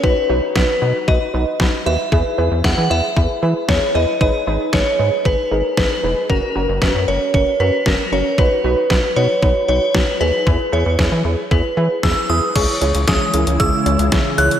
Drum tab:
CC |----------------|----------------|----------------|----------------|
HH |----------------|----------------|----------------|----------------|
SD |----o-------o---|----o-------o---|----o-------o---|----o-------o---|
BD |o---o---o---o---|o---o---o---o---|o---o---o---o---|o---o---o---o---|

CC |----------------|----------------|x---------------|
HH |----------------|----------------|x-xxx-xxx-xxx-xx|
SD |----o-------o---|----o-------o---|----o-------o---|
BD |o---o---o---o---|o---o---o---o---|o---o---o---o---|